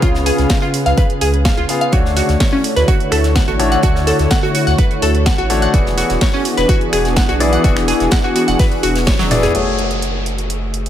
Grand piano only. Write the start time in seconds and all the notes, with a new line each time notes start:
0.02 C#3 B3 F4 C#5
1.69 B3 F4 G#4 F5
1.93 D3 A3 D4 F#4 C#5
3.59 D3 A3 D4 F#4 C#5
3.83 D3 A3 D4 F#4 C#5
5.50 A3 D4 F#4 C#5
5.74 E3 B3 E4 G#4 D5
7.40 E3 B3 E4 G#4 D5
7.64 E3 B3
9.31 B3 E4 G#4 D5
9.55 A3 F#4 G#4 C#5